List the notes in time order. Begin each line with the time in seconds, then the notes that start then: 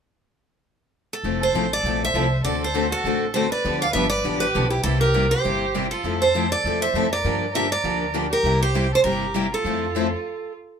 1.13 A4
1.23 F1 F3 A3 C4 E4 A4
1.40 A4 C5
1.53 A1 F3 A3 C4 E4 A4
1.71 A4 D5
1.83 A#1 F3 A3 C4 E4 A4
2.01 C5 E5
2.14 C2 F3 A3 C4 E4 A4
2.44 D2 D3 A3 C4 F#4 A4 D5
2.61 A4 C5
2.74 D3 A3 C4 F#4 A4
2.90 F#4 A4
3.04 A1 D3 A3 C4 F#4 A4
3.33 D3 A3 C4 F#4 A4 C5
3.50 B4 D5
3.64 D2 D3 F3 B3 D4 G4
3.81 D5 F5
3.92 G1 D3 F3 B3 D4 G4 B4 E5
4.10 B4 D5
4.24 A1 D3 F3 B3 D4 G4
4.39 G4 B4
4.55 B1 D3 F3 B3 D4 G4
4.70 E4 G4
4.82 C2 C3 G3 A#3 E4 A4
4.86 G4
4.99 G4 A#4
5.14 C3 G3 A#3 E4 G4
5.29 G4 C5
5.44 G1 C3 G3 A#3 E4 G4
5.74 C3 G3 A#3 E4 G4
5.90 F4 A4
6.04 F2 F3 A3 C4 E4 A4
6.19 A4 C5
6.35 F3 A3 C4 E4 A4
6.50 A4 D5
6.64 E2 F3 A3 C4 E4 A4
6.80 C5 E5
6.94 F2 F3 A3 C4 E4 A4
7.11 A#4 D5
7.24 G2 D3 F3 A#3 D4 G4
7.52 D3 F3 A#3 A#4 E5
7.56 D4 G4
7.69 A#4 D5
7.84 D2 D3 F3 A#3 D4 G4
8.14 D3 F3 A#3 D4 G4
8.30 G4 A#4
8.43 C2 C3 G3 A#3 E4 G4
8.61 G4 C5
8.74 C3 G3 A#3 E4 G4
8.92 A4 C5
9.03 G1 C3 G3 A#3 E4 G4 A#4
9.34 C3 G3 A#3 E4 G4
9.51 F4 A4
9.64 F2 F3 A3 C4 E4 A4
9.96 F3 A3 C4 E4 A4